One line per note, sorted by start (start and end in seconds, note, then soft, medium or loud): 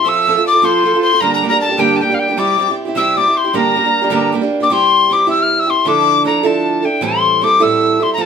0.00 0.45 E5 medium
0.00 0.10 C6 medium
0.05 0.26 F3 medium
0.05 0.27 C4 medium
0.05 0.27 F4 medium
0.05 0.27 A4 medium
0.05 0.47 E6 loud
0.27 0.36 F3 medium
0.27 0.36 C4 medium
0.27 0.36 F4 medium
0.27 0.34 A4 medium
0.35 0.55 C4 soft
0.35 0.53 F4 soft
0.35 0.51 A4 soft
0.46 0.62 D5 medium
0.46 0.66 D6 medium
0.53 0.62 C4 soft
0.53 0.62 F4 soft
0.53 0.62 A4 soft
0.62 0.82 F3 medium
0.62 0.82 C4 medium
0.62 0.84 F4 medium
0.62 0.85 A4 medium
0.62 1.00 C5 medium
0.62 1.01 C6 medium
0.83 0.93 F3 medium
0.83 0.93 C4 medium
0.83 0.94 F4 medium
0.83 0.92 A4 medium
0.93 1.13 C4 soft
0.93 1.12 F4 soft
0.93 1.10 A4 soft
1.02 1.20 C5 medium
1.02 1.22 C6 medium
1.11 1.22 C4 soft
1.11 1.22 F4 soft
1.11 1.21 A4 soft
1.21 1.42 G2 medium
1.21 1.42 D3 medium
1.21 1.41 G3 medium
1.21 1.42 A#3 medium
1.21 1.42 D4 medium
1.21 1.44 G4 medium
1.21 1.35 A#4 medium
1.21 1.33 A#5 loud
1.34 1.48 A#5 medium
1.42 1.51 G3 medium
1.42 1.51 A#3 medium
1.42 1.50 D4 medium
1.42 1.48 G4 medium
1.48 1.70 A#3 soft
1.48 1.69 D4 soft
1.48 1.68 G4 soft
1.48 1.61 A#4 medium
1.48 1.60 A#5 loud
1.53 1.71 G3 soft
1.61 1.74 A4 medium
1.61 1.81 A5 medium
1.69 1.77 G3 soft
1.69 1.78 A#3 soft
1.69 1.78 D4 soft
1.69 1.78 G4 medium
1.75 2.00 G2 medium
1.75 2.00 D3 medium
1.75 1.99 G3 medium
1.75 2.00 A#3 medium
1.75 2.01 D4 medium
1.75 1.80 A4 soft
1.79 1.99 G4 medium
1.79 2.01 G4 medium
1.79 1.98 G5 medium
1.96 2.17 G4 medium
1.96 2.03 A5 medium
2.01 2.10 G3 soft
2.01 2.10 A#3 soft
2.01 2.10 D4 medium
2.01 2.08 G4 soft
2.01 2.16 G5 medium
2.10 2.29 G3 soft
2.10 2.29 A#3 soft
2.10 2.28 D4 medium
2.10 2.27 G4 soft
2.14 2.21 F5 medium
2.19 2.38 G4 medium
2.19 2.40 G5 medium
2.29 2.36 G3 soft
2.29 2.38 A#3 soft
2.29 2.38 D4 soft
2.29 2.38 G4 soft
2.37 2.59 C3 medium
2.37 2.56 G3 medium
2.37 2.58 C4 medium
2.37 2.59 E4 medium
2.37 2.60 G4 medium
2.37 2.57 D5 medium
2.37 2.71 D6 loud
2.58 2.67 G3 soft
2.58 2.68 C4 medium
2.58 2.68 E4 medium
2.58 2.67 G4 medium
2.58 2.76 D5 medium
2.68 2.87 C4 soft
2.68 2.86 E4 soft
2.68 2.84 G4 soft
2.85 2.95 C4 soft
2.85 2.96 E4 soft
2.85 2.95 G4 soft
2.95 3.17 C3 medium
2.95 3.15 G3 medium
2.95 3.17 C4 medium
2.95 3.18 E4 medium
2.95 3.18 G4 medium
2.95 3.15 E5 medium
2.95 3.19 E6 medium
3.17 3.26 G3 soft
3.17 3.26 C4 soft
3.17 3.26 E4 medium
3.17 3.25 G4 medium
3.17 3.36 D5 medium
3.17 3.39 D6 medium
3.26 3.46 C4 soft
3.26 3.44 E4 soft
3.26 3.43 G4 soft
3.36 3.54 C5 medium
3.36 3.57 C6 medium
3.44 3.54 C4 soft
3.44 3.54 E4 soft
3.44 3.53 G4 soft
3.53 3.75 G2 medium
3.53 3.75 D3 medium
3.53 3.73 G3 medium
3.53 3.75 A#3 medium
3.53 3.75 D4 medium
3.53 3.76 G4 medium
3.53 4.30 A#4 medium
3.53 4.34 A#5 medium
3.75 3.84 G3 medium
3.75 3.84 A#3 medium
3.75 3.84 D4 medium
3.75 3.82 G4 medium
3.83 4.03 G3 soft
3.83 4.03 A#3 soft
3.83 4.02 D4 soft
3.83 4.00 G4 soft
4.01 4.10 G3 soft
4.01 4.10 A#3 medium
4.01 4.10 D4 medium
4.01 4.11 G4 medium
4.10 4.32 G2 medium
4.10 4.32 D3 medium
4.10 4.31 G3 medium
4.10 4.32 A#3 medium
4.10 4.33 D4 medium
4.10 4.34 G4 medium
4.32 4.42 G3 medium
4.32 4.42 A#3 medium
4.32 4.40 D4 medium
4.32 4.40 G4 medium
4.41 4.61 G3 soft
4.41 4.61 A#3 soft
4.41 4.60 D4 medium
4.41 4.59 G4 soft
4.60 4.69 G3 soft
4.60 4.70 A#3 soft
4.60 4.70 D4 soft
4.60 4.70 G4 soft
4.60 4.74 D6 medium
4.70 5.10 C3 medium
4.70 5.09 G3 medium
4.70 5.10 C4 medium
4.70 5.11 E4 medium
4.70 5.11 G4 medium
4.70 5.14 C6 medium
5.10 5.27 G3 soft
5.10 5.27 C4 medium
5.10 5.26 E4 medium
5.10 5.26 G4 medium
5.10 5.30 D6 medium
5.27 5.68 C3 soft
5.27 5.68 G3 medium
5.27 5.68 C4 medium
5.27 5.67 E4 medium
5.27 5.65 G4 medium
5.27 5.44 E6 medium
5.42 5.61 F6 medium
5.59 5.72 E6 loud
5.66 5.85 C4 soft
5.66 5.85 E4 soft
5.66 5.85 G4 soft
5.66 5.90 C6 medium
5.85 6.26 D3 medium
5.85 6.23 F3 medium
5.85 6.24 D4 medium
5.85 6.24 E4 medium
5.85 6.26 A4 medium
5.85 6.26 D6 loud
6.24 6.43 F3 medium
6.24 6.43 D4 medium
6.24 6.42 E4 medium
6.24 6.42 A4 medium
6.24 6.48 A#5 medium
6.43 6.85 D3 medium
6.43 6.84 F3 medium
6.43 6.84 D4 medium
6.43 6.83 E4 medium
6.43 6.82 A4 medium
6.43 6.81 A5 medium
6.81 7.01 E4 soft
6.81 7.02 A4 soft
6.81 6.87 A5 medium
6.85 7.02 D4 soft
6.85 7.05 G5 medium
7.01 7.42 A2 medium
7.01 7.42 E3 medium
7.01 7.40 G3 medium
7.01 7.41 C4 medium
7.01 7.42 E4 medium
7.01 7.43 A4 medium
7.01 7.45 C6 loud
7.41 7.60 G3 medium
7.41 7.60 C4 medium
7.41 7.59 E4 medium
7.41 7.59 A4 medium
7.41 7.64 D6 medium
7.60 8.01 A2 soft
7.60 8.01 E3 medium
7.60 8.01 G3 medium
7.60 8.00 C4 medium
7.60 7.99 E4 medium
7.60 7.99 A4 medium
7.60 8.04 E6 medium
7.99 8.17 G3 soft
7.99 8.17 C4 soft
7.99 8.18 E4 soft
7.99 8.18 A4 soft
7.99 8.13 C6 medium
8.13 8.23 A#5 medium
8.17 8.26 F3 medium
8.17 8.26 C4 medium
8.17 8.26 F4 medium
8.17 8.26 A4 medium
8.17 8.26 A5 loud